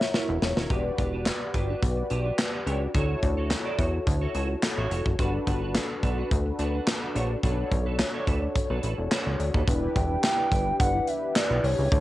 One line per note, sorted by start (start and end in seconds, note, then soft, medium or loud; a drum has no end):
0.00 0.68 E4 medium
0.00 0.68 F#4 medium
0.00 0.72 A#4 medium
0.00 0.69 C#5 medium
0.00 0.43 E5 loud
0.00 muted clean electric guitar stroke soft
0.00 snare medium
0.14 0.34 E4 medium
0.14 0.29 A#4 medium
0.14 0.28 C#5 medium
0.14 snare loud
0.29 0.39 E1 loud
0.29 muted clean electric guitar stroke soft
0.42 0.53 E1 loud
0.42 muted clean electric guitar stroke soft
0.42 snare loud
0.57 0.67 D#1 medium
0.57 0.69 E4 medium
0.57 0.70 A#4 medium
0.57 0.71 C#5 medium
0.57 snare loud
0.69 0.91 E1 loud
0.69 0.90 D4 medium
0.69 2.90 F#4 medium
0.69 2.90 G4 medium
0.69 0.85 G4 medium
0.69 2.91 B4 medium
0.69 0.84 B4 medium
0.69 2.91 D5 medium
0.69 kick loud
0.69 closed hi-hat medium
0.85 muted clean electric guitar stroke soft
0.98 1.31 E1 medium
0.98 1.13 D4 medium
0.98 1.12 G4 medium
0.98 1.12 B4 medium
0.98 kick medium
0.98 closed hi-hat medium
1.13 1.25 D4 medium
1.13 1.26 G4 medium
1.13 1.26 B4 medium
1.26 muted clean electric guitar stroke soft
1.26 snare loud
1.26 clap medium
1.26 closed hi-hat loud
1.41 muted clean electric guitar stroke soft
1.54 1.75 G1 medium
1.54 1.69 D4 medium
1.54 1.68 G4 medium
1.54 1.68 B4 medium
1.54 kick medium
1.54 closed hi-hat medium
1.69 1.81 D4 soft
1.69 1.82 G4 soft
1.69 1.82 B4 medium
1.82 2.03 B1 medium
1.82 muted clean electric guitar stroke soft
1.82 kick loud
1.82 closed hi-hat medium
1.97 muted clean electric guitar stroke soft
2.10 2.32 B1 medium
2.10 2.25 D4 medium
2.10 2.25 G4 medium
2.10 2.24 B4 medium
2.10 closed hi-hat medium
2.25 2.37 D4 soft
2.25 2.38 G4 soft
2.25 2.38 B4 medium
2.38 muted clean electric guitar stroke soft
2.38 snare loud
2.38 clap loud
2.38 closed hi-hat medium
2.53 2.65 D4 soft
2.53 2.66 G4 soft
2.53 2.67 B4 soft
2.66 2.88 C#2 medium
2.66 2.87 D4 medium
2.66 2.81 G4 loud
2.66 2.81 C#5 medium
2.66 closed hi-hat medium
2.81 muted clean electric guitar stroke soft
2.94 3.16 D2 loud
2.94 5.14 E4 medium
2.94 3.20 F#4 medium
2.94 5.15 F#4 medium
2.94 3.21 A4 medium
2.94 5.15 A4 medium
2.94 3.21 C#5 medium
2.94 5.15 C#5 medium
2.94 kick loud
2.94 closed hi-hat medium
3.22 3.55 D2 loud
3.22 muted clean electric guitar stroke soft
3.22 kick medium
3.22 closed hi-hat medium
3.37 3.49 F#4 medium
3.37 3.50 A4 medium
3.37 3.50 C#5 medium
3.50 muted clean electric guitar stroke soft
3.50 snare medium
3.50 clap medium
3.50 closed hi-hat medium
3.65 3.77 F#4 medium
3.65 3.78 A4 medium
3.65 3.79 D5 medium
3.78 4.00 E2 medium
3.78 3.95 F#4 medium
3.78 3.93 A4 medium
3.78 3.92 C#5 medium
3.78 kick medium
3.78 closed hi-hat medium
3.94 muted clean electric guitar stroke soft
4.07 4.28 D2 loud
4.07 muted clean electric guitar stroke soft
4.07 kick loud
4.07 closed hi-hat medium
4.21 4.33 F#4 medium
4.21 4.34 A4 medium
4.21 4.35 C#5 medium
4.35 4.56 C#2 medium
4.35 4.51 F#4 medium
4.35 4.49 A4 medium
4.35 4.48 C#5 medium
4.35 closed hi-hat medium
4.50 muted clean electric guitar stroke soft
4.63 muted clean electric guitar stroke soft
4.63 snare loud
4.63 clap loud
4.63 closed hi-hat medium
4.77 4.88 A1 medium
4.77 4.89 F#4 medium
4.77 4.90 A4 medium
4.77 4.90 C#5 medium
4.90 5.02 F1 medium
4.90 5.07 F#4 medium
4.90 5.05 A4 medium
4.90 5.04 C#5 medium
4.90 closed hi-hat medium
5.06 5.16 F#1 medium
5.06 muted clean electric guitar stroke soft
5.06 kick medium
5.18 5.40 G1 loud
5.18 7.39 D4 medium
5.18 5.39 D4 medium
5.18 7.39 F#4 medium
5.18 5.33 F#4 medium
5.18 7.39 A4 medium
5.18 5.33 B4 medium
5.18 7.40 B4 medium
5.18 kick loud
5.18 closed hi-hat medium
5.34 muted clean electric guitar stroke soft
5.47 5.79 G1 loud
5.47 5.62 D4 medium
5.47 5.61 F#4 medium
5.47 5.60 B4 medium
5.47 kick medium
5.47 closed hi-hat medium
5.62 5.74 D4 medium
5.62 5.74 F#4 medium
5.62 5.75 B4 medium
5.75 muted clean electric guitar stroke soft
5.75 snare loud
5.75 clap medium
5.75 closed hi-hat medium
5.90 muted clean electric guitar stroke soft
6.03 6.24 B1 medium
6.03 6.18 D4 medium
6.03 6.17 F#4 medium
6.03 6.17 B4 medium
6.03 kick medium
6.03 closed hi-hat medium
6.18 6.30 D4 medium
6.18 6.30 F#4 medium
6.18 6.31 B4 medium
6.31 6.52 D2 loud
6.31 muted clean electric guitar stroke soft
6.31 kick loud
6.31 closed hi-hat loud
6.46 muted clean electric guitar stroke soft
6.59 6.80 D2 medium
6.59 6.74 D4 medium
6.59 6.73 F#4 medium
6.59 6.73 B4 medium
6.59 closed hi-hat medium
6.74 6.86 D4 medium
6.74 6.86 F#4 soft
6.74 6.87 B4 medium
6.87 muted clean electric guitar stroke soft
6.87 snare loud
6.87 clap loud
6.87 closed hi-hat medium
7.02 7.14 D4 medium
7.02 7.15 F#4 medium
7.02 7.16 B4 medium
7.15 7.36 A#1 medium
7.15 7.35 D4 medium
7.15 7.30 F#4 medium
7.15 7.30 C#5 medium
7.15 closed hi-hat medium
7.30 muted clean electric guitar stroke medium
7.42 7.64 B1 medium
7.42 9.63 D4 medium
7.42 7.69 D4 medium
7.42 9.63 F#4 medium
7.42 9.64 A4 medium
7.42 7.70 A4 medium
7.42 7.70 B4 medium
7.42 9.64 C#5 medium
7.42 kick loud
7.42 closed hi-hat medium
7.72 8.04 B1 loud
7.72 muted clean electric guitar stroke soft
7.72 kick medium
7.72 closed hi-hat medium
7.86 7.98 D4 medium
7.86 7.99 A4 medium
7.86 7.99 B4 medium
7.99 muted clean electric guitar stroke soft
7.99 snare loud
7.99 clap medium
7.99 closed hi-hat medium
8.14 8.26 D4 medium
8.14 8.27 A4 medium
8.14 8.28 C#5 medium
8.27 8.48 D2 medium
8.27 8.43 D4 medium
8.27 8.42 A4 medium
8.27 8.41 B4 medium
8.27 kick medium
8.27 closed hi-hat medium
8.42 muted clean electric guitar stroke soft
8.55 muted clean electric guitar stroke soft
8.55 kick loud
8.55 closed hi-hat loud
8.70 8.80 B1 medium
8.70 8.82 D4 medium
8.70 8.83 A4 medium
8.70 8.83 B4 medium
8.83 8.95 A1 medium
8.83 9.00 D4 medium
8.83 8.98 A4 medium
8.83 8.97 B4 medium
8.83 closed hi-hat medium
8.98 9.08 E1 medium
8.98 muted clean electric guitar stroke soft
9.11 9.32 D4 medium
9.11 9.26 A4 medium
9.11 9.25 B4 medium
9.11 snare loud
9.11 clap loud
9.11 closed hi-hat medium
9.26 9.36 C#2 medium
9.26 muted clean electric guitar stroke soft
9.39 9.51 D2 medium
9.39 muted clean electric guitar stroke soft
9.39 closed hi-hat medium
9.54 9.64 D#2 medium
9.54 9.70 D4 soft
9.54 9.69 A4 medium
9.54 9.69 B4 medium
9.54 kick medium
9.67 9.89 E1 loud
9.67 11.87 D4 medium
9.67 11.88 E4 medium
9.67 11.88 G4 medium
9.67 11.88 B4 medium
9.67 kick loud
9.67 closed hi-hat loud
9.96 10.17 E1 loud
9.96 10.22 G5 loud
9.96 kick medium
9.96 closed hi-hat medium
10.24 10.76 G5 loud
10.24 snare loud
10.24 clap medium
10.24 closed hi-hat loud
10.52 10.73 G1 medium
10.52 kick medium
10.52 closed hi-hat medium
10.79 11.01 G1 loud
10.79 11.09 F#5 loud
10.79 kick loud
10.79 closed hi-hat loud
11.07 11.37 E5 loud
11.07 closed hi-hat medium
11.36 11.65 D5 loud
11.36 snare loud
11.36 clap loud
11.36 closed hi-hat loud
11.50 11.60 B1 medium
11.64 11.75 C2 loud
11.64 12.00 C#5 loud
11.64 open hi-hat medium
11.79 11.88 C#2 medium
11.91 12.00 D2 loud
11.91 12.00 E4 medium
11.91 12.00 F#4 medium
11.91 12.00 A4 medium
11.91 12.00 C#5 medium
11.91 kick loud
11.91 closed hi-hat medium